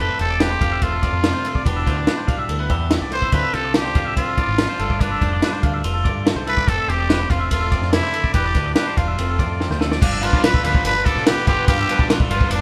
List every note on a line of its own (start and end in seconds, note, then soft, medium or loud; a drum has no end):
0.00 0.81 A3 medium
0.00 0.20 C4 medium
0.00 1.65 A4 medium
0.00 0.20 B4 loud
0.09 0.20 E5 medium
0.19 0.55 E1 medium
0.19 0.40 C4 medium
0.19 0.42 A4 medium
0.19 0.30 C5 medium
0.19 ride medium
0.30 0.41 D5 medium
0.40 1.01 C4 medium
0.40 0.85 G4 medium
0.40 0.51 B4 medium
0.40 snare loud
0.40 ride medium
0.51 0.61 C5 medium
0.61 0.72 F1 medium
0.61 1.66 F3 medium
0.61 0.72 F5 medium
0.61 kick medium
0.61 ride medium
0.72 1.07 E1 medium
0.72 0.93 E5 medium
0.82 1.44 A3 medium
0.82 1.65 F4 medium
0.82 kick medium
0.82 ride medium
0.92 1.03 A4 medium
1.02 1.66 C4 medium
1.02 1.24 D5 medium
1.02 kick medium
1.02 ride medium
1.13 1.31 F2 medium
1.23 1.65 C3 medium
1.23 snare loud
1.23 ride medium
1.33 1.44 C5 medium
1.44 1.65 A3 medium
1.44 1.55 A4 medium
1.44 ride medium
1.55 1.66 D5 medium
1.55 kick medium
1.65 1.83 E1 medium
1.65 2.90 E3 medium
1.65 2.48 B3 medium
1.65 2.45 D4 medium
1.65 2.07 D4 medium
1.65 1.86 G4 medium
1.65 1.76 B4 medium
1.65 kick medium
1.65 ride medium
1.76 1.87 E5 medium
1.86 2.05 D2 medium
1.86 1.97 F4 medium
1.86 1.97 C5 medium
1.86 kick medium
1.86 snare soft
1.86 ride medium
1.97 2.68 G4 medium
1.97 2.07 D5 medium
2.07 3.33 D4 medium
2.07 2.17 B4 medium
2.07 snare loud
2.07 ride medium
2.18 2.28 C5 medium
2.27 2.46 B1 medium
2.27 3.30 G3 medium
2.27 2.38 F5 medium
2.27 kick medium
2.27 ride medium
2.38 2.60 E5 medium
2.49 2.70 D2 medium
2.49 2.59 A3 medium
2.49 ride medium
2.59 3.10 B3 soft
2.59 2.70 B4 medium
2.70 2.97 E2 medium
2.70 3.30 G4 medium
2.70 2.91 E5 medium
2.70 kick medium
2.70 ride medium
2.91 3.31 E3 medium
2.91 snare loud
2.91 ride medium
3.01 3.28 C2 medium
3.01 3.12 D5 medium
3.11 3.22 A3 medium
3.11 3.23 B4 medium
3.11 3.35 C5 medium
3.11 ride medium
3.22 3.32 B3 soft
3.22 3.33 E5 medium
3.22 kick medium
3.32 3.42 D2 loud
3.32 4.37 D3 medium
3.32 4.17 C4 medium
3.32 3.75 D4 medium
3.32 3.54 F4 medium
3.32 3.56 B4 medium
3.32 3.43 C5 medium
3.32 kick medium
3.32 ride medium
3.43 3.54 E5 medium
3.53 3.89 C2 medium
3.53 5.02 F4 medium
3.53 3.75 A4 medium
3.53 3.64 C5 medium
3.53 snare soft
3.53 ride medium
3.64 3.75 D5 medium
3.74 4.77 D4 medium
3.74 4.14 G4 medium
3.74 3.85 B4 medium
3.74 snare loud
3.74 ride medium
3.85 3.96 C5 medium
3.95 4.06 D2 medium
3.95 4.59 F3 medium
3.95 4.06 F5 medium
3.95 kick medium
3.95 ride medium
4.06 4.41 C2 medium
4.06 4.27 E5 medium
4.17 4.77 C4 medium
4.17 5.02 F4 medium
4.17 kick medium
4.17 ride medium
4.27 4.38 A4 medium
4.37 4.58 E3 medium
4.37 4.59 D5 medium
4.37 kick medium
4.37 ride medium
4.48 4.66 G#1 medium
4.58 4.80 F3 medium
4.58 snare loud
4.58 ride medium
4.69 4.80 C5 medium
4.79 5.15 G1 medium
4.79 6.44 G2 medium
4.79 5.64 A3 medium
4.79 5.22 D4 medium
4.79 4.90 A4 medium
4.79 ride medium
4.90 5.01 D5 medium
4.90 kick medium
5.00 5.84 D4 medium
5.00 5.84 F4 medium
5.00 5.11 B4 medium
5.00 kick medium
5.00 ride medium
5.11 5.22 E5 medium
5.21 5.39 F1 medium
5.21 6.45 D4 medium
5.21 5.33 C5 medium
5.21 kick medium
5.21 ride medium
5.33 5.42 D5 medium
5.42 6.44 G3 medium
5.42 5.52 B4 medium
5.42 snare loud
5.42 ride medium
5.53 5.63 C5 medium
5.63 5.81 D2 medium
5.63 6.24 A3 medium
5.63 5.74 F5 medium
5.63 kick medium
5.63 ride medium
5.74 5.94 E5 medium
5.84 6.07 F1 medium
5.84 6.47 F4 medium
5.84 ride medium
5.94 6.05 A4 medium
6.04 6.32 G2 medium
6.04 6.44 D3 medium
6.04 6.25 D5 medium
6.04 kick medium
6.04 ride medium
6.25 6.46 A3 medium
6.25 snare loud
6.25 ride medium
6.35 6.62 C2 medium
6.35 6.47 C5 medium
6.47 6.65 G2 medium
6.47 6.66 A3 medium
6.47 6.67 E4 medium
6.47 6.57 A4 medium
6.47 6.70 B4 loud
6.47 ride medium
6.57 6.67 D5 medium
6.57 kick medium
6.57 snare soft
6.67 6.76 F1 loud
6.67 7.51 A3 medium
6.67 6.87 C4 medium
6.67 6.91 A4 medium
6.67 6.77 C5 medium
6.67 kick medium
6.67 ride medium
6.78 6.88 E5 medium
6.88 7.24 E1 medium
6.88 7.08 C4 medium
6.88 7.32 G4 loud
6.88 6.98 C5 medium
6.88 ride medium
6.98 7.09 D5 medium
7.09 7.72 C4 medium
7.09 7.19 B4 medium
7.09 snare loud
7.09 ride medium
7.19 7.30 C5 medium
7.30 7.40 F1 medium
7.30 8.35 F3 medium
7.30 7.51 F4 medium
7.30 7.40 F5 medium
7.30 kick medium
7.30 ride medium
7.40 7.76 E1 medium
7.40 7.61 E5 medium
7.51 8.35 A3 medium
7.51 7.90 F4 medium
7.51 kick medium
7.51 ride medium
7.60 7.72 A4 medium
7.72 8.35 C4 medium
7.72 7.93 D5 medium
7.72 kick medium
7.72 ride medium
7.82 8.00 F2 medium
7.82 snare soft
7.93 8.14 C3 medium
7.93 8.32 E4 loud
7.93 snare loud
7.93 ride loud
8.03 8.13 C5 medium
8.13 8.34 D3 medium
8.13 8.24 A4 medium
8.13 ride medium
8.23 8.33 D5 medium
8.23 kick medium
8.34 8.52 E1 loud
8.34 9.15 E3 medium
8.34 8.55 D4 medium
8.34 8.73 G4 medium
8.34 8.45 B4 medium
8.34 kick medium
8.34 ride medium
8.45 8.55 D5 medium
8.55 8.73 D2 medium
8.55 8.75 D4 medium
8.55 8.66 B4 medium
8.55 kick medium
8.55 snare soft
8.55 ride medium
8.66 8.76 D5 medium
8.75 9.16 D4 medium
8.75 8.99 G4 medium
8.75 8.87 B4 medium
8.75 snare loud
8.75 ride medium
8.87 8.97 C5 medium
8.96 9.15 E1 medium
8.96 9.15 G3 medium
8.96 9.81 F4 medium
8.96 9.07 F5 medium
8.96 kick medium
8.96 ride medium
9.07 9.28 E5 medium
9.18 9.41 F1 medium
9.18 10.01 F2 medium
9.18 10.02 A3 medium
9.18 9.38 C4 medium
9.18 ride medium
9.29 9.39 A4 medium
9.39 9.66 F2 medium
9.39 9.59 C4 medium
9.39 9.60 D5 medium
9.39 kick medium
9.39 ride medium
9.60 10.02 C4 medium
9.60 snare medium
9.70 9.96 D2 loud
9.70 9.81 C5 medium
9.70 snare medium
9.80 10.63 F3 medium
9.80 9.91 A4 medium
9.80 snare medium
9.91 10.01 D5 medium
9.91 snare medium
10.01 10.28 G1 loud
10.01 11.65 G2 medium
10.01 10.25 D4 medium
10.01 10.12 F5 medium
10.01 kick loud
10.01 crash loud
10.12 10.22 E5 medium
10.22 10.50 D3 medium
10.22 10.50 F3 medium
10.22 10.50 B3 medium
10.22 10.85 D4 medium
10.22 10.49 F4 medium
10.22 10.44 F4 medium
10.22 10.33 B4 medium
10.22 ride medium
10.33 10.59 B1 medium
10.33 10.43 D5 medium
10.33 kick medium
10.33 snare soft
10.43 11.47 F4 medium
10.43 10.54 B4 medium
10.43 10.63 B4 medium
10.43 snare loud
10.43 ride medium
10.54 10.65 A4 medium
10.54 kick medium
10.63 10.73 D2 medium
10.63 10.91 D3 medium
10.63 10.91 F3 medium
10.63 12.14 G3 medium
10.63 10.91 B3 medium
10.63 10.91 F4 medium
10.63 10.75 B4 medium
10.63 10.84 B4 medium
10.63 ride medium
10.75 10.95 C5 medium
10.75 kick medium
10.84 11.02 G1 medium
10.84 11.66 D4 medium
10.84 11.07 B4 loud
10.84 ride loud
10.96 11.06 B4 medium
11.05 11.65 D3 medium
11.05 11.33 D3 medium
11.05 11.33 F3 medium
11.05 11.33 B3 medium
11.05 11.32 F4 loud
11.05 11.26 A4 medium
11.05 11.27 D5 medium
11.05 kick medium
11.05 ride medium
11.15 11.33 B1 medium
11.15 snare soft
11.26 12.14 B3 medium
11.26 11.46 G4 medium
11.26 11.48 B4 medium
11.26 snare loud
11.26 ride loud
11.47 11.56 G1 medium
11.47 11.74 D3 medium
11.47 11.74 F3 medium
11.47 11.74 B3 medium
11.47 11.74 F4 medium
11.47 12.10 F4 medium
11.47 11.67 G4 loud
11.47 11.58 A4 medium
11.47 kick medium
11.47 ride medium
11.58 11.68 B4 medium
11.68 11.85 G2 loud
11.68 12.61 G2 medium
11.68 12.06 G4 loud
11.68 11.79 F5 medium
11.68 kick loud
11.68 ride loud
11.80 11.89 E5 medium
11.89 12.16 D3 medium
11.89 12.16 F3 medium
11.89 12.16 B3 medium
11.89 12.52 D4 medium
11.89 12.16 F4 loud
11.89 11.99 B4 medium
11.89 ride medium
11.99 12.25 B1 medium
11.99 12.10 D5 medium
11.99 kick medium
12.10 12.61 F4 medium
12.10 12.21 B4 medium
12.10 snare loud
12.10 ride loud
12.20 12.32 A4 medium
12.20 kick medium
12.29 12.47 G1 loud
12.29 12.58 D3 medium
12.29 12.58 F3 medium
12.29 12.61 G3 medium
12.29 12.58 B3 medium
12.29 12.53 F4 medium
12.29 12.57 F4 medium
12.29 12.43 B4 medium
12.29 ride medium
12.41 12.61 C5 medium
12.41 kick medium
12.50 12.61 F1 loud
12.50 12.61 D4 medium
12.50 ride medium